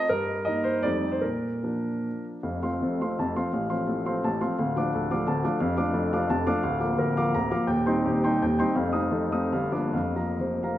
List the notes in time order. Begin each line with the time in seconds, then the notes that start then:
Already playing: D#5
0.09 G2 A#4
0.45 G3 A#3 D#4 D#5
0.64 C5
0.83 F2 G3 A3 D#4 D5
1.12 C5
1.21 A#2 A#4
1.63 F3 A#3 D4
2.43 F1 F2 F5
2.62 F3 A3 C4 F5 C6
2.82 F1 F2 A4
3.01 F3 A3 C4 F5 C6
3.19 F1 F2 A5
3.36 F3 A3 C4 F5 C6
3.53 A1 A2 F5
3.69 F3 A3 C4 F5 C6
3.87 A1 A2 A4
4.06 F3 A3 C4 F5 C6
4.24 A1 A2 A5
4.41 F3 A3 C4 F5 C6
4.59 D1 D2 F5
4.76 F3 A3 D4 F5 D6
4.94 D1 D2 A4
5.11 F3 A3 D4 F5 D6
5.27 D1 D2 A5
5.44 F3 A3 D4 F5 D6
5.60 F1 F2 F5
5.77 F3 A3 D4 F5 D6
5.93 F1 F2 A4
6.13 F3 A3 D4 F5 D6
6.30 F1 F2 A5
6.46 F3 A3 D4 F5 D6
6.63 D1 D2 F5
6.80 F3 A#3 F5 D6
6.98 D1 D2 A#4
7.17 F3 A#3 F5 D6
7.34 D1 D2 A#5
7.51 F3 A#3 F5 D6
7.67 D#1 D#2 G5
7.86 G3 C4 D#4 G5 C6
8.05 D#1 D#2 G4
8.24 G3 C4 D#4 G5 C6
8.42 D#1 D#2 G5
8.59 G3 C4 D#4 G5 C6
8.75 F1 F2 F5
8.93 A3 C4 D#4 F5 D#6
9.11 F1 F2 A4
9.32 A3 C4 D#4 F5 D#6
9.52 G1 G2 F5
9.72 F3 A#3 D4 F5 D6
9.93 F1 F2 F5
10.16 F3 A#3 F5 A#5
10.40 F1 F2 C5
10.63 F3 A#3 F5 A#5